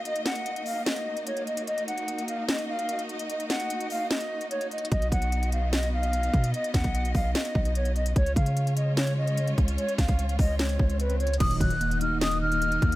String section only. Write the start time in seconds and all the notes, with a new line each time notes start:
Already playing: A#3 D#4 F#4 D#5
1.67 D#5
4.92 B3 D#5
8.16 G#3 C#4 F4 C#5
11.40 A#3 D#4 F#4 D#5